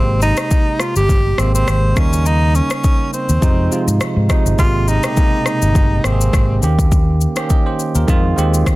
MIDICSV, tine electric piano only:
0, 0, Header, 1, 2, 480
1, 0, Start_track
1, 0, Key_signature, -4, "major"
1, 0, Tempo, 582524
1, 1860, Time_signature, 4, 2, 24, 8
1, 7215, End_track
2, 0, Start_track
2, 0, Title_t, "Tine electric piano"
2, 0, Program_c, 0, 4
2, 0, Note_on_c, 0, 48, 72
2, 0, Note_on_c, 0, 56, 64
2, 0, Note_on_c, 0, 58, 66
2, 0, Note_on_c, 0, 67, 75
2, 98, Control_c, 0, 64, 127
2, 648, Note_off_c, 0, 48, 0
2, 651, Note_off_c, 0, 56, 0
2, 655, Note_off_c, 0, 58, 0
2, 658, Note_off_c, 0, 67, 0
2, 1130, Note_on_c, 0, 48, 76
2, 1136, Note_on_c, 0, 56, 71
2, 1143, Note_on_c, 0, 58, 66
2, 1150, Note_on_c, 0, 67, 83
2, 1502, Note_off_c, 0, 48, 0
2, 1506, Note_off_c, 0, 56, 0
2, 1509, Note_off_c, 0, 58, 0
2, 1513, Note_off_c, 0, 67, 0
2, 1610, Note_on_c, 0, 49, 77
2, 1617, Note_on_c, 0, 55, 72
2, 1624, Note_on_c, 0, 58, 73
2, 1630, Control_c, 0, 64, 0
2, 1630, Note_on_c, 0, 63, 89
2, 1752, Control_c, 0, 64, 127
2, 2388, Note_off_c, 0, 49, 0
2, 2391, Note_off_c, 0, 55, 0
2, 2395, Note_off_c, 0, 58, 0
2, 2398, Note_off_c, 0, 63, 0
2, 2811, Note_on_c, 0, 48, 82
2, 2817, Note_on_c, 0, 53, 75
2, 2824, Note_on_c, 0, 56, 76
2, 2831, Note_on_c, 0, 63, 86
2, 2832, Control_c, 0, 64, 0
2, 2977, Control_c, 0, 64, 127
2, 3012, Note_off_c, 0, 48, 0
2, 3016, Note_off_c, 0, 53, 0
2, 3019, Note_off_c, 0, 56, 0
2, 3022, Note_off_c, 0, 63, 0
2, 3050, Note_on_c, 0, 48, 74
2, 3057, Note_on_c, 0, 53, 66
2, 3064, Note_on_c, 0, 56, 67
2, 3071, Note_on_c, 0, 65, 84
2, 3423, Note_off_c, 0, 48, 0
2, 3426, Note_off_c, 0, 53, 0
2, 3430, Note_off_c, 0, 56, 0
2, 3433, Note_off_c, 0, 65, 0
2, 3530, Note_on_c, 0, 48, 79
2, 3537, Note_on_c, 0, 53, 73
2, 3544, Note_on_c, 0, 56, 73
2, 3550, Note_on_c, 0, 63, 88
2, 3719, Note_off_c, 0, 48, 0
2, 3723, Note_off_c, 0, 53, 0
2, 3726, Note_off_c, 0, 56, 0
2, 3729, Note_off_c, 0, 63, 0
2, 3769, Note_on_c, 0, 48, 69
2, 3776, Note_on_c, 0, 56, 66
2, 3783, Note_on_c, 0, 58, 67
2, 3790, Note_on_c, 0, 67, 77
2, 3792, Control_c, 0, 64, 0
2, 3939, Control_c, 0, 64, 127
2, 4045, Note_off_c, 0, 48, 0
2, 4048, Note_off_c, 0, 56, 0
2, 4051, Note_off_c, 0, 58, 0
2, 4055, Note_off_c, 0, 67, 0
2, 4142, Note_on_c, 0, 47, 57
2, 4148, Note_on_c, 0, 56, 66
2, 4155, Note_on_c, 0, 58, 64
2, 4162, Note_on_c, 0, 67, 80
2, 4195, Note_off_c, 0, 47, 0
2, 4195, Note_on_c, 0, 48, 75
2, 4764, Note_off_c, 0, 56, 0
2, 4767, Note_off_c, 0, 58, 0
2, 4770, Note_off_c, 0, 67, 0
2, 4787, Note_off_c, 0, 48, 0
2, 4970, Note_on_c, 0, 48, 74
2, 4977, Note_on_c, 0, 56, 67
2, 4984, Note_on_c, 0, 58, 70
2, 4991, Note_on_c, 0, 67, 67
2, 5044, Note_off_c, 0, 67, 0
2, 5045, Note_on_c, 0, 68, 79
2, 5446, Note_off_c, 0, 58, 0
2, 5449, Note_on_c, 0, 51, 78
2, 5455, Note_off_c, 0, 48, 0
2, 5456, Note_on_c, 0, 58, 73
2, 5459, Note_off_c, 0, 56, 0
2, 5463, Note_on_c, 0, 61, 70
2, 5470, Note_on_c, 0, 67, 86
2, 5472, Control_c, 0, 64, 0
2, 5492, Note_off_c, 0, 68, 0
2, 5608, Control_c, 0, 64, 127
2, 5935, Note_off_c, 0, 51, 0
2, 5938, Note_off_c, 0, 58, 0
2, 5942, Note_off_c, 0, 61, 0
2, 5945, Note_off_c, 0, 67, 0
2, 6062, Note_on_c, 0, 51, 86
2, 6069, Note_on_c, 0, 58, 79
2, 6076, Note_on_c, 0, 61, 81
2, 6083, Note_on_c, 0, 67, 100
2, 6181, Note_on_c, 0, 75, 66
2, 6185, Note_off_c, 0, 67, 0
2, 6186, Note_on_c, 0, 70, 58
2, 6306, Note_off_c, 0, 75, 0
2, 6309, Note_off_c, 0, 70, 0
2, 6313, Note_on_c, 0, 72, 77
2, 6318, Note_on_c, 0, 67, 63
2, 6540, Note_off_c, 0, 72, 0
2, 6543, Note_off_c, 0, 67, 0
2, 6553, Note_on_c, 0, 70, 69
2, 6558, Note_on_c, 0, 65, 58
2, 6640, Note_off_c, 0, 51, 0
2, 6650, Note_on_c, 0, 51, 96
2, 6657, Note_on_c, 0, 56, 90
2, 6658, Note_off_c, 0, 58, 0
2, 6661, Note_off_c, 0, 65, 0
2, 6662, Note_off_c, 0, 61, 0
2, 6664, Note_on_c, 0, 60, 88
2, 6671, Note_on_c, 0, 65, 107
2, 6672, Control_c, 0, 64, 0
2, 6781, Note_off_c, 0, 70, 0
2, 6827, Control_c, 0, 64, 127
2, 6852, Note_off_c, 0, 51, 0
2, 6855, Note_off_c, 0, 56, 0
2, 6859, Note_off_c, 0, 60, 0
2, 6862, Note_off_c, 0, 65, 0
2, 6890, Note_on_c, 0, 51, 93
2, 6896, Note_on_c, 0, 56, 78
2, 6904, Note_on_c, 0, 60, 80
2, 6910, Note_on_c, 0, 67, 100
2, 7145, Note_off_c, 0, 67, 0
2, 7215, Note_off_c, 0, 51, 0
2, 7215, Note_off_c, 0, 56, 0
2, 7215, Note_off_c, 0, 60, 0
2, 7215, End_track
0, 0, End_of_file